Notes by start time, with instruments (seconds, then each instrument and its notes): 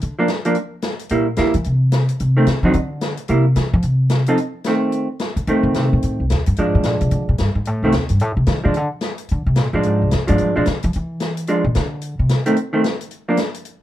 0.01 upright bass D3, closed hi-hat
0.19 hollow-body jazz guitar F3 A#3 D4
0.28 snare, closed hi-hat
0.45 hollow-body jazz guitar F3 A#3 D4, closed hi-hat
0.55 closed hi-hat
0.82 snare, closed hi-hat
0.99 closed hi-hat
1.09 upright bass A#2, hollow-body jazz guitar G3 A#3 E4, closed hi-hat
1.36 upright bass D3, hollow-body jazz guitar G3 A#3 E4, snare, closed hi-hat
1.54 upright bass E3, closed hi-hat
1.64 upright bass C3, closed hi-hat
1.92 snare, closed hi-hat
2.09 closed hi-hat
2.20 upright bass C3, closed hi-hat
2.37 hollow-body jazz guitar D#3 A3 C4
2.47 upright bass D#3, snare, closed hi-hat
2.63 hollow-body jazz guitar D3 F#3 C4 D#4, upright bass F3
2.73 upright bass D3, closed hi-hat
3.01 snare, closed hi-hat
3.17 closed hi-hat
3.28 upright bass C3, hollow-body jazz guitar G3 A#3 E4, closed hi-hat
3.56 upright bass E3, snare, closed hi-hat
3.73 upright bass F3
3.82 upright bass C3, closed hi-hat
4.09 snare, closed hi-hat
4.26 hollow-body jazz guitar F3 C4 D#4 A4, closed hi-hat
4.37 closed hi-hat
4.64 hollow-body jazz guitar D#3 A3 C4, snare, closed hi-hat
4.92 closed hi-hat
5.19 snare, closed hi-hat
5.36 upright bass D3, closed hi-hat
5.47 upright bass D#3, hollow-body jazz guitar D#3 A3 C4, closed hi-hat
5.63 upright bass D3
5.74 upright bass C3, snare, closed hi-hat
5.93 upright bass A#2
6.02 upright bass A2, closed hi-hat
6.20 upright bass C2
6.30 upright bass D#2, snare, closed hi-hat
6.46 upright bass G2, closed hi-hat
6.56 upright bass G#2, hollow-body jazz guitar F3 G#3 D4, closed hi-hat
6.75 upright bass A2
6.83 upright bass A#2, snare, closed hi-hat
7.01 upright bass C3, closed hi-hat
7.11 upright bass D3, closed hi-hat
7.29 upright bass A#2
7.38 upright bass G2, snare, closed hi-hat
7.55 upright bass G#2
7.65 upright bass A2, closed hi-hat
7.83 upright bass C2, hollow-body jazz guitar D#3 A3 C4
7.92 upright bass D#2, snare, closed hi-hat
8.09 upright bass G2, closed hi-hat
8.20 upright bass A2, closed hi-hat
8.37 upright bass C3
8.46 upright bass D#3, snare, closed hi-hat
8.64 upright bass C#3, hollow-body jazz guitar F3 G#3 D4
8.74 upright bass D3, closed hi-hat
9.01 snare, closed hi-hat
9.18 closed hi-hat
9.29 upright bass D3, closed hi-hat
9.46 upright bass C3
9.56 upright bass A#2, snare, closed hi-hat
9.73 upright bass A2, hollow-body jazz guitar F3 G#3 D4
9.83 upright bass G#2, closed hi-hat
10.02 upright bass C2
10.11 upright bass F2, snare, closed hi-hat
10.27 upright bass G#2, hollow-body jazz guitar F3 G#3 D4, closed hi-hat
10.38 upright bass G2, closed hi-hat
10.56 upright bass A#2, hollow-body jazz guitar F3 G#3 D4
10.66 upright bass D3, snare, closed hi-hat
10.83 upright bass F3, closed hi-hat
10.93 upright bass E3, closed hi-hat
11.20 snare, closed hi-hat
11.37 closed hi-hat
11.47 hollow-body jazz guitar F3 G#3 D4, closed hi-hat
11.64 upright bass A#2
11.75 upright bass D3, snare, closed hi-hat
12.01 closed hi-hat
12.19 upright bass C3
12.29 snare, closed hi-hat
12.46 hollow-body jazz guitar D#3 A3 C4, closed hi-hat
12.56 closed hi-hat
12.73 hollow-body jazz guitar D#3 A3 C4
12.84 snare, closed hi-hat
13.01 closed hi-hat
13.11 closed hi-hat
13.29 hollow-body jazz guitar F3 A#3 D4
13.37 snare, closed hi-hat
13.54 closed hi-hat
13.65 closed hi-hat